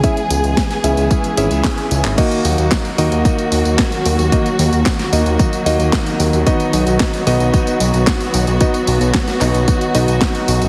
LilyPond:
<<
  \new Staff \with { instrumentName = "Electric grand piano" } { \time 4/4 \key cis \dorian \tempo 4 = 112 <cis' e' gis' e''>16 r4 r16 <cis' e' gis' e''>4 <cis' e' gis' e''>4. | \key dis \phrygian <ais dis' fis' dis''>4. <ais dis' fis' dis''>2~ <ais dis' fis' dis''>8 | <ais dis' fis' dis''>16 r4 r16 <ais dis' fis' dis''>4 <ais dis' fis' dis''>4. | <b dis' fis' dis''>4. <b dis' fis' dis''>2~ <b dis' fis' dis''>8 |
<b dis' fis' dis''>16 r4 r16 <b dis' fis' dis''>4 <b dis' fis' dis''>4. | }
  \new Staff \with { instrumentName = "String section" } { \time 4/4 \key cis \dorian << { <b gis'>1 | \key dis \phrygian <ais fis'>1~ | <ais fis'>1 | <b fis'>1~ |
<b fis'>1 | } \\ { <e gis>1 | <dis fis>1~ | <dis fis>1~ | <dis fis>1~ |
<dis fis>1 | } >> }
  \new Staff \with { instrumentName = "Analog synth bass" } { \clef bass \time 4/4 \key cis \dorian r8 cis,16 cis,16 r8 cis,16 cis,16 r8 gis,,16 cis,16 r8 cis,16 gis,,16 | \key dis \phrygian r8 dis,16 dis,16 r8 dis,16 dis,16 r8 dis,16 dis,16 r8 dis,16 dis,16 | r8 dis,16 dis,16 r8 dis,16 dis,16 r8 dis,16 dis,16 r8 dis,16 dis,16 | r8 b,,16 b,,16 r8 b,,16 b,,16 r8 b,,16 b,,16 r8 b,,16 b,,16 |
r8 b,,16 b,,16 r8 b,,16 b,,16 r8 b,,16 b,,16 r8 b,,16 fis,,16 | }
  \new DrumStaff \with { instrumentName = "Drums" } \drummode { \time 4/4 <hh bd tamb>16 <hh tamb>16 <hh tamb>16 <hh tamb>16 <hh bd sn tamb>16 <hh sn tamb>16 <hh tamb>16 <hh tamb>16 <hh bd tamb>16 <hh tamb>16 <hh tamb>16 <hh tamb>16 <hc hh bd sn tamb>16 <hh tamb>16 <hh tamb>16 <hc hh tamb>16 | <cymc hh bd tamb>16 <hh tamb>16 <hho tamb>16 <hh tamb>16 <hc hh bd sn tamb>16 <hh tamb>16 <hho tamb>16 <hh tamb>16 <hh bd tamb>16 <hh tamb>16 <hho tamb>16 <hh tamb>16 <hc hh bd sn tamb>16 <hh tamb>16 <hho tamb>16 <hh tamb>16 | <hh bd tamb>16 <hh tamb>16 <hho tamb>16 <hh tamb>16 <hc hh bd sn tamb>16 <hh sn tamb>16 <hho tamb>16 <hh tamb>16 <hh bd tamb>16 <hh tamb>16 <hho tamb>16 <hh tamb>16 <hc hh bd sn tamb>16 <hh tamb>16 <hho tamb>16 <hh tamb>16 | <hh bd tamb>16 <hh tamb>16 <hho tamb>16 <hh tamb>16 <hc hh bd sn tamb>16 <hh tamb>16 <hho tamb>16 <hh tamb>16 <hh bd tamb>16 <hh tamb>16 <hho tamb>16 <hh tamb>16 <hc hh bd sn tamb>16 <hh tamb>16 <hho tamb>16 <hh tamb>16 |
<hh bd tamb>16 <hh tamb>16 <hho tamb>16 <hh tamb>16 <hc hh bd sn tamb>16 <hh sn tamb>16 <hc hho tamb>16 <hh tamb>16 <hh bd tamb>16 <hh tamb>16 <hho tamb>16 <hh tamb>16 <hc hh bd sn tamb>16 <hh tamb>16 <hho tamb>16 <hh tamb>16 | }
>>